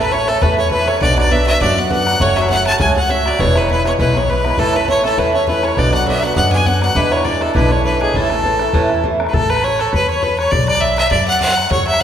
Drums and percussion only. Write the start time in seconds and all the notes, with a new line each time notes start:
0.05 bodhran
0.11 bodhran
0.28 bodhran
0.42 bodhran
0.71 bodhran
0.80 bodhran
0.88 bodhran
1.01 bodhran
1.10 bodhran
1.18 bodhran
1.24 bodhran
1.31 bodhran
1.48 bodhran
1.61 bodhran
1.91 bodhran
1.99 bodhran
2.07 bodhran
2.20 bodhran
2.28 bodhran
2.37 bodhran
2.43 bodhran
2.50 bodhran
2.66 bodhran
2.79 bodhran
3.10 bodhran
3.18 bodhran
3.26 bodhran
3.39 bodhran
3.47 bodhran
3.56 bodhran
3.62 bodhran
3.69 bodhran
3.85 bodhran
3.99 bodhran
4.15 bodhran
4.28 bodhran
4.37 bodhran
4.45 bodhran
4.51 bodhran
4.58 bodhran
4.66 bodhran
4.73 bodhran
4.81 bodhran
4.88 bodhran
5.04 bodhran
5.18 bodhran
5.47 bodhran
5.55 bodhran
5.63 bodhran
5.77 bodhran
5.85 bodhran
5.93 bodhran
6.06 bodhran
6.23 bodhran
6.36 bodhran
6.65 bodhran
6.74 bodhran
6.82 bodhran
6.95 bodhran
7.04 bodhran
7.12 bodhran
7.18 bodhran
7.25 bodhran
7.41 bodhran
7.55 bodhran
7.85 bodhran
7.93 bodhran
8.01 bodhran
8.14 bodhran
8.22 bodhran
8.30 bodhran
8.43 bodhran
8.59 bodhran
8.73 bodhran
8.89 bodhran
9.04 bodhran
9.12 bodhran
9.20 bodhran
9.27 bodhran
9.34 bodhran
9.42 bodhran
9.50 bodhran
9.57 bodhran
9.64 bodhran
9.79 bodhran
9.94 bodhran
10.22 bodhran
10.31 bodhran
10.39 bodhran
10.52 bodhran
10.60 bodhran
10.68 bodhran
10.75 bodhran
10.82 bodhran
10.98 bodhran
11.11 bodhran
11.41 bodhran
11.49 bodhran
11.57 bodhran
11.71 bodhran
11.80 bodhran
11.88 bodhran
11.94 bodhran